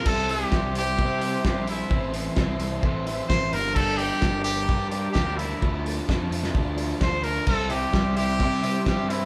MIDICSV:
0, 0, Header, 1, 7, 480
1, 0, Start_track
1, 0, Tempo, 462963
1, 58, Time_signature, 4, 2, 24, 8
1, 9592, End_track
2, 0, Start_track
2, 0, Title_t, "String machine"
2, 0, Program_c, 0, 50
2, 72, Note_on_c, 0, 72, 78
2, 73, Note_on_c, 0, 76, 73
2, 75, Note_on_c, 0, 84, 92
2, 82, Note_on_c, 0, 67, 78
2, 1958, Note_off_c, 0, 76, 0
2, 1971, Note_on_c, 0, 76, 69
2, 1972, Note_off_c, 0, 67, 0
2, 1975, Note_on_c, 0, 69, 83
2, 3631, Note_off_c, 0, 72, 0
2, 3632, Note_off_c, 0, 84, 0
2, 3637, Note_on_c, 0, 67, 84
2, 3639, Note_off_c, 0, 76, 0
2, 3641, Note_off_c, 0, 69, 0
2, 3649, Note_on_c, 0, 70, 81
2, 3649, Note_on_c, 0, 86, 91
2, 3653, Note_on_c, 0, 81, 86
2, 5788, Note_off_c, 0, 67, 0
2, 5794, Note_off_c, 0, 70, 0
2, 5826, Note_on_c, 0, 74, 75
2, 5836, Note_on_c, 0, 65, 83
2, 7695, Note_off_c, 0, 86, 0
2, 7698, Note_off_c, 0, 81, 0
2, 7725, Note_off_c, 0, 74, 0
2, 7730, Note_off_c, 0, 65, 0
2, 7742, Note_on_c, 0, 88, 87
2, 7748, Note_on_c, 0, 84, 75
2, 7750, Note_on_c, 0, 67, 82
2, 7755, Note_on_c, 0, 76, 70
2, 9592, Note_off_c, 0, 67, 0
2, 9592, Note_off_c, 0, 76, 0
2, 9592, Note_off_c, 0, 84, 0
2, 9592, Note_off_c, 0, 88, 0
2, 9592, End_track
3, 0, Start_track
3, 0, Title_t, "Trumpet"
3, 0, Program_c, 1, 56
3, 71, Note_on_c, 1, 69, 109
3, 317, Note_on_c, 1, 67, 103
3, 332, Note_off_c, 1, 69, 0
3, 788, Note_off_c, 1, 67, 0
3, 810, Note_on_c, 1, 67, 106
3, 1473, Note_off_c, 1, 67, 0
3, 1513, Note_on_c, 1, 67, 89
3, 1730, Note_off_c, 1, 67, 0
3, 1757, Note_on_c, 1, 64, 83
3, 2195, Note_off_c, 1, 64, 0
3, 3404, Note_on_c, 1, 72, 110
3, 3663, Note_on_c, 1, 70, 104
3, 3679, Note_off_c, 1, 72, 0
3, 3889, Note_on_c, 1, 69, 117
3, 3904, Note_off_c, 1, 70, 0
3, 4120, Note_on_c, 1, 67, 107
3, 4136, Note_off_c, 1, 69, 0
3, 4594, Note_off_c, 1, 67, 0
3, 4600, Note_on_c, 1, 67, 99
3, 5056, Note_off_c, 1, 67, 0
3, 5081, Note_on_c, 1, 67, 84
3, 5303, Note_off_c, 1, 67, 0
3, 5309, Note_on_c, 1, 67, 100
3, 5568, Note_on_c, 1, 64, 83
3, 5583, Note_off_c, 1, 67, 0
3, 6055, Note_off_c, 1, 64, 0
3, 7282, Note_on_c, 1, 72, 102
3, 7502, Note_on_c, 1, 70, 99
3, 7518, Note_off_c, 1, 72, 0
3, 7742, Note_off_c, 1, 70, 0
3, 7750, Note_on_c, 1, 69, 108
3, 7990, Note_on_c, 1, 67, 104
3, 8006, Note_off_c, 1, 69, 0
3, 8466, Note_off_c, 1, 67, 0
3, 8476, Note_on_c, 1, 67, 107
3, 9148, Note_off_c, 1, 67, 0
3, 9222, Note_on_c, 1, 67, 91
3, 9433, Note_on_c, 1, 64, 82
3, 9449, Note_off_c, 1, 67, 0
3, 9592, Note_off_c, 1, 64, 0
3, 9592, End_track
4, 0, Start_track
4, 0, Title_t, "Overdriven electric guitar"
4, 0, Program_c, 2, 29
4, 75, Note_on_c, 2, 55, 102
4, 86, Note_on_c, 2, 60, 95
4, 105, Note_on_c, 2, 64, 113
4, 320, Note_off_c, 2, 64, 0
4, 324, Note_on_c, 2, 64, 74
4, 339, Note_off_c, 2, 60, 0
4, 343, Note_on_c, 2, 60, 58
4, 530, Note_off_c, 2, 55, 0
4, 543, Note_on_c, 2, 55, 71
4, 553, Note_off_c, 2, 60, 0
4, 557, Note_on_c, 2, 60, 77
4, 569, Note_off_c, 2, 64, 0
4, 573, Note_on_c, 2, 64, 77
4, 1003, Note_off_c, 2, 55, 0
4, 1015, Note_on_c, 2, 55, 84
4, 1024, Note_off_c, 2, 60, 0
4, 1036, Note_on_c, 2, 60, 95
4, 1040, Note_off_c, 2, 64, 0
4, 1053, Note_on_c, 2, 64, 96
4, 1238, Note_off_c, 2, 64, 0
4, 1251, Note_on_c, 2, 64, 75
4, 1268, Note_off_c, 2, 60, 0
4, 1281, Note_on_c, 2, 60, 66
4, 1480, Note_off_c, 2, 55, 0
4, 1491, Note_off_c, 2, 60, 0
4, 1493, Note_on_c, 2, 55, 70
4, 1504, Note_on_c, 2, 60, 84
4, 1505, Note_off_c, 2, 64, 0
4, 1518, Note_on_c, 2, 64, 76
4, 1720, Note_off_c, 2, 64, 0
4, 1732, Note_on_c, 2, 64, 87
4, 1744, Note_off_c, 2, 60, 0
4, 1757, Note_on_c, 2, 60, 59
4, 1960, Note_off_c, 2, 55, 0
4, 1961, Note_off_c, 2, 64, 0
4, 1964, Note_on_c, 2, 52, 110
4, 1970, Note_off_c, 2, 60, 0
4, 1982, Note_on_c, 2, 60, 103
4, 2000, Note_on_c, 2, 64, 106
4, 2191, Note_off_c, 2, 64, 0
4, 2203, Note_on_c, 2, 64, 78
4, 2219, Note_off_c, 2, 60, 0
4, 2231, Note_on_c, 2, 60, 60
4, 2437, Note_off_c, 2, 52, 0
4, 2450, Note_on_c, 2, 52, 76
4, 2456, Note_off_c, 2, 60, 0
4, 2465, Note_off_c, 2, 64, 0
4, 2469, Note_on_c, 2, 60, 84
4, 2477, Note_on_c, 2, 64, 78
4, 2919, Note_off_c, 2, 52, 0
4, 2931, Note_on_c, 2, 52, 91
4, 2938, Note_off_c, 2, 60, 0
4, 2950, Note_on_c, 2, 60, 94
4, 2952, Note_off_c, 2, 64, 0
4, 2965, Note_on_c, 2, 64, 105
4, 3165, Note_off_c, 2, 64, 0
4, 3178, Note_on_c, 2, 64, 80
4, 3202, Note_off_c, 2, 60, 0
4, 3215, Note_on_c, 2, 60, 60
4, 3403, Note_off_c, 2, 52, 0
4, 3415, Note_on_c, 2, 52, 79
4, 3417, Note_off_c, 2, 60, 0
4, 3428, Note_off_c, 2, 64, 0
4, 3430, Note_on_c, 2, 60, 85
4, 3441, Note_on_c, 2, 64, 87
4, 3643, Note_off_c, 2, 52, 0
4, 3651, Note_off_c, 2, 60, 0
4, 3651, Note_off_c, 2, 64, 0
4, 3655, Note_on_c, 2, 62, 102
4, 3675, Note_on_c, 2, 58, 86
4, 3683, Note_on_c, 2, 55, 81
4, 3869, Note_off_c, 2, 55, 0
4, 3882, Note_on_c, 2, 55, 92
4, 3883, Note_off_c, 2, 58, 0
4, 3895, Note_on_c, 2, 58, 101
4, 3909, Note_off_c, 2, 62, 0
4, 3913, Note_on_c, 2, 62, 109
4, 4128, Note_off_c, 2, 62, 0
4, 4132, Note_on_c, 2, 62, 76
4, 4149, Note_off_c, 2, 58, 0
4, 4162, Note_on_c, 2, 58, 59
4, 4366, Note_off_c, 2, 55, 0
4, 4379, Note_on_c, 2, 55, 71
4, 4380, Note_off_c, 2, 58, 0
4, 4392, Note_on_c, 2, 58, 79
4, 4404, Note_off_c, 2, 62, 0
4, 4408, Note_on_c, 2, 62, 86
4, 4839, Note_off_c, 2, 55, 0
4, 4851, Note_on_c, 2, 55, 93
4, 4854, Note_off_c, 2, 58, 0
4, 4864, Note_off_c, 2, 62, 0
4, 4866, Note_on_c, 2, 58, 97
4, 4877, Note_on_c, 2, 62, 109
4, 5090, Note_off_c, 2, 62, 0
4, 5102, Note_on_c, 2, 62, 78
4, 5115, Note_off_c, 2, 58, 0
4, 5127, Note_on_c, 2, 58, 58
4, 5337, Note_off_c, 2, 55, 0
4, 5348, Note_on_c, 2, 55, 77
4, 5349, Note_off_c, 2, 58, 0
4, 5361, Note_off_c, 2, 62, 0
4, 5361, Note_on_c, 2, 58, 81
4, 5374, Note_on_c, 2, 62, 80
4, 5574, Note_off_c, 2, 62, 0
4, 5586, Note_on_c, 2, 62, 72
4, 5606, Note_off_c, 2, 58, 0
4, 5619, Note_on_c, 2, 58, 69
4, 5809, Note_off_c, 2, 62, 0
4, 5810, Note_off_c, 2, 55, 0
4, 5822, Note_on_c, 2, 53, 92
4, 5826, Note_off_c, 2, 58, 0
4, 5833, Note_on_c, 2, 57, 102
4, 5853, Note_on_c, 2, 62, 105
4, 6046, Note_off_c, 2, 62, 0
4, 6058, Note_on_c, 2, 62, 75
4, 6079, Note_off_c, 2, 57, 0
4, 6092, Note_on_c, 2, 57, 65
4, 6290, Note_off_c, 2, 53, 0
4, 6302, Note_on_c, 2, 53, 70
4, 6307, Note_off_c, 2, 57, 0
4, 6317, Note_off_c, 2, 62, 0
4, 6320, Note_on_c, 2, 57, 80
4, 6329, Note_on_c, 2, 62, 76
4, 6780, Note_off_c, 2, 53, 0
4, 6792, Note_on_c, 2, 53, 90
4, 6793, Note_off_c, 2, 57, 0
4, 6802, Note_off_c, 2, 62, 0
4, 6806, Note_on_c, 2, 57, 108
4, 6814, Note_on_c, 2, 62, 112
4, 7028, Note_off_c, 2, 62, 0
4, 7041, Note_on_c, 2, 62, 70
4, 7057, Note_off_c, 2, 57, 0
4, 7069, Note_on_c, 2, 57, 59
4, 7258, Note_off_c, 2, 53, 0
4, 7271, Note_on_c, 2, 53, 69
4, 7275, Note_off_c, 2, 57, 0
4, 7285, Note_off_c, 2, 62, 0
4, 7287, Note_on_c, 2, 57, 74
4, 7298, Note_on_c, 2, 62, 77
4, 7494, Note_off_c, 2, 62, 0
4, 7506, Note_on_c, 2, 62, 75
4, 7527, Note_off_c, 2, 57, 0
4, 7539, Note_on_c, 2, 57, 67
4, 7730, Note_off_c, 2, 62, 0
4, 7732, Note_off_c, 2, 53, 0
4, 7746, Note_off_c, 2, 57, 0
4, 7755, Note_on_c, 2, 55, 97
4, 7770, Note_on_c, 2, 60, 94
4, 7788, Note_on_c, 2, 64, 104
4, 7975, Note_off_c, 2, 64, 0
4, 7979, Note_on_c, 2, 64, 75
4, 8006, Note_off_c, 2, 60, 0
4, 8010, Note_on_c, 2, 60, 58
4, 8208, Note_off_c, 2, 55, 0
4, 8220, Note_on_c, 2, 55, 74
4, 8232, Note_off_c, 2, 60, 0
4, 8237, Note_on_c, 2, 60, 84
4, 8244, Note_off_c, 2, 64, 0
4, 8248, Note_on_c, 2, 64, 84
4, 8691, Note_off_c, 2, 55, 0
4, 8702, Note_off_c, 2, 60, 0
4, 8704, Note_on_c, 2, 55, 88
4, 8715, Note_on_c, 2, 60, 103
4, 8725, Note_off_c, 2, 64, 0
4, 8737, Note_on_c, 2, 64, 101
4, 8921, Note_off_c, 2, 64, 0
4, 8933, Note_on_c, 2, 64, 80
4, 8954, Note_off_c, 2, 60, 0
4, 8967, Note_on_c, 2, 60, 57
4, 9159, Note_off_c, 2, 55, 0
4, 9169, Note_off_c, 2, 60, 0
4, 9172, Note_on_c, 2, 55, 70
4, 9182, Note_on_c, 2, 60, 78
4, 9190, Note_off_c, 2, 64, 0
4, 9203, Note_on_c, 2, 64, 77
4, 9404, Note_off_c, 2, 64, 0
4, 9416, Note_on_c, 2, 64, 90
4, 9434, Note_off_c, 2, 60, 0
4, 9446, Note_on_c, 2, 60, 65
4, 9592, Note_off_c, 2, 55, 0
4, 9592, Note_off_c, 2, 60, 0
4, 9592, Note_off_c, 2, 64, 0
4, 9592, End_track
5, 0, Start_track
5, 0, Title_t, "Clean electric guitar"
5, 0, Program_c, 3, 27
5, 7752, Note_on_c, 3, 48, 78
5, 7985, Note_off_c, 3, 48, 0
5, 7997, Note_on_c, 3, 48, 73
5, 8462, Note_on_c, 3, 64, 86
5, 8925, Note_off_c, 3, 48, 0
5, 8938, Note_on_c, 3, 48, 75
5, 9592, Note_off_c, 3, 48, 0
5, 9592, Note_off_c, 3, 64, 0
5, 9592, End_track
6, 0, Start_track
6, 0, Title_t, "Picked electric bass"
6, 0, Program_c, 4, 34
6, 58, Note_on_c, 4, 36, 99
6, 449, Note_off_c, 4, 36, 0
6, 538, Note_on_c, 4, 36, 97
6, 1018, Note_on_c, 4, 48, 105
6, 1033, Note_off_c, 4, 36, 0
6, 1409, Note_off_c, 4, 48, 0
6, 1502, Note_on_c, 4, 34, 75
6, 1892, Note_off_c, 4, 34, 0
6, 1971, Note_on_c, 4, 33, 92
6, 2365, Note_off_c, 4, 33, 0
6, 2454, Note_on_c, 4, 36, 94
6, 2652, Note_off_c, 4, 36, 0
6, 2679, Note_on_c, 4, 36, 100
6, 2883, Note_off_c, 4, 36, 0
6, 2931, Note_on_c, 4, 33, 96
6, 3325, Note_off_c, 4, 33, 0
6, 3412, Note_on_c, 4, 33, 99
6, 3611, Note_off_c, 4, 33, 0
6, 3657, Note_on_c, 4, 31, 104
6, 4244, Note_off_c, 4, 31, 0
6, 4374, Note_on_c, 4, 31, 95
6, 4859, Note_on_c, 4, 43, 105
6, 4875, Note_off_c, 4, 31, 0
6, 5251, Note_off_c, 4, 43, 0
6, 5341, Note_on_c, 4, 38, 84
6, 5732, Note_off_c, 4, 38, 0
6, 5821, Note_on_c, 4, 38, 101
6, 6212, Note_off_c, 4, 38, 0
6, 6310, Note_on_c, 4, 41, 95
6, 6502, Note_off_c, 4, 41, 0
6, 6536, Note_on_c, 4, 41, 94
6, 6734, Note_off_c, 4, 41, 0
6, 6787, Note_on_c, 4, 38, 97
6, 7176, Note_off_c, 4, 38, 0
6, 7264, Note_on_c, 4, 38, 92
6, 7654, Note_off_c, 4, 38, 0
6, 7743, Note_on_c, 4, 36, 105
6, 8133, Note_off_c, 4, 36, 0
6, 8223, Note_on_c, 4, 36, 94
6, 8701, Note_on_c, 4, 48, 106
6, 8717, Note_off_c, 4, 36, 0
6, 9092, Note_off_c, 4, 48, 0
6, 9188, Note_on_c, 4, 43, 81
6, 9576, Note_off_c, 4, 43, 0
6, 9592, End_track
7, 0, Start_track
7, 0, Title_t, "Drums"
7, 57, Note_on_c, 9, 49, 122
7, 62, Note_on_c, 9, 36, 117
7, 160, Note_off_c, 9, 49, 0
7, 166, Note_off_c, 9, 36, 0
7, 302, Note_on_c, 9, 46, 84
7, 406, Note_off_c, 9, 46, 0
7, 537, Note_on_c, 9, 38, 103
7, 541, Note_on_c, 9, 36, 115
7, 640, Note_off_c, 9, 38, 0
7, 645, Note_off_c, 9, 36, 0
7, 781, Note_on_c, 9, 46, 90
7, 884, Note_off_c, 9, 46, 0
7, 1023, Note_on_c, 9, 36, 118
7, 1126, Note_off_c, 9, 36, 0
7, 1259, Note_on_c, 9, 46, 87
7, 1363, Note_off_c, 9, 46, 0
7, 1499, Note_on_c, 9, 38, 104
7, 1500, Note_on_c, 9, 36, 114
7, 1603, Note_off_c, 9, 38, 0
7, 1604, Note_off_c, 9, 36, 0
7, 1736, Note_on_c, 9, 46, 83
7, 1840, Note_off_c, 9, 46, 0
7, 1978, Note_on_c, 9, 36, 115
7, 2082, Note_off_c, 9, 36, 0
7, 2215, Note_on_c, 9, 46, 83
7, 2318, Note_off_c, 9, 46, 0
7, 2452, Note_on_c, 9, 38, 120
7, 2456, Note_on_c, 9, 36, 110
7, 2556, Note_off_c, 9, 38, 0
7, 2560, Note_off_c, 9, 36, 0
7, 2693, Note_on_c, 9, 46, 80
7, 2796, Note_off_c, 9, 46, 0
7, 2935, Note_on_c, 9, 36, 124
7, 3039, Note_off_c, 9, 36, 0
7, 3180, Note_on_c, 9, 46, 76
7, 3284, Note_off_c, 9, 46, 0
7, 3419, Note_on_c, 9, 36, 113
7, 3422, Note_on_c, 9, 38, 110
7, 3523, Note_off_c, 9, 36, 0
7, 3526, Note_off_c, 9, 38, 0
7, 3659, Note_on_c, 9, 46, 84
7, 3762, Note_off_c, 9, 46, 0
7, 3898, Note_on_c, 9, 36, 110
7, 3900, Note_on_c, 9, 57, 99
7, 4002, Note_off_c, 9, 36, 0
7, 4003, Note_off_c, 9, 57, 0
7, 4134, Note_on_c, 9, 46, 81
7, 4238, Note_off_c, 9, 46, 0
7, 4373, Note_on_c, 9, 38, 109
7, 4378, Note_on_c, 9, 36, 122
7, 4477, Note_off_c, 9, 38, 0
7, 4482, Note_off_c, 9, 36, 0
7, 4618, Note_on_c, 9, 46, 91
7, 4721, Note_off_c, 9, 46, 0
7, 4862, Note_on_c, 9, 36, 126
7, 4965, Note_off_c, 9, 36, 0
7, 5096, Note_on_c, 9, 46, 89
7, 5200, Note_off_c, 9, 46, 0
7, 5340, Note_on_c, 9, 38, 117
7, 5344, Note_on_c, 9, 36, 108
7, 5444, Note_off_c, 9, 38, 0
7, 5448, Note_off_c, 9, 36, 0
7, 5589, Note_on_c, 9, 46, 86
7, 5692, Note_off_c, 9, 46, 0
7, 5830, Note_on_c, 9, 36, 120
7, 5934, Note_off_c, 9, 36, 0
7, 6078, Note_on_c, 9, 46, 82
7, 6181, Note_off_c, 9, 46, 0
7, 6313, Note_on_c, 9, 36, 107
7, 6319, Note_on_c, 9, 38, 103
7, 6417, Note_off_c, 9, 36, 0
7, 6423, Note_off_c, 9, 38, 0
7, 6556, Note_on_c, 9, 46, 85
7, 6660, Note_off_c, 9, 46, 0
7, 6671, Note_on_c, 9, 38, 78
7, 6775, Note_off_c, 9, 38, 0
7, 6789, Note_on_c, 9, 36, 115
7, 6893, Note_off_c, 9, 36, 0
7, 7027, Note_on_c, 9, 46, 76
7, 7131, Note_off_c, 9, 46, 0
7, 7267, Note_on_c, 9, 38, 110
7, 7270, Note_on_c, 9, 36, 110
7, 7370, Note_off_c, 9, 38, 0
7, 7373, Note_off_c, 9, 36, 0
7, 7502, Note_on_c, 9, 46, 78
7, 7606, Note_off_c, 9, 46, 0
7, 7740, Note_on_c, 9, 49, 101
7, 7747, Note_on_c, 9, 36, 113
7, 7844, Note_off_c, 9, 49, 0
7, 7851, Note_off_c, 9, 36, 0
7, 7982, Note_on_c, 9, 46, 73
7, 8085, Note_off_c, 9, 46, 0
7, 8227, Note_on_c, 9, 36, 117
7, 8229, Note_on_c, 9, 38, 115
7, 8331, Note_off_c, 9, 36, 0
7, 8333, Note_off_c, 9, 38, 0
7, 8467, Note_on_c, 9, 46, 86
7, 8571, Note_off_c, 9, 46, 0
7, 8709, Note_on_c, 9, 36, 120
7, 8813, Note_off_c, 9, 36, 0
7, 8953, Note_on_c, 9, 46, 90
7, 9057, Note_off_c, 9, 46, 0
7, 9191, Note_on_c, 9, 36, 101
7, 9192, Note_on_c, 9, 38, 120
7, 9294, Note_off_c, 9, 36, 0
7, 9295, Note_off_c, 9, 38, 0
7, 9438, Note_on_c, 9, 46, 88
7, 9542, Note_off_c, 9, 46, 0
7, 9592, End_track
0, 0, End_of_file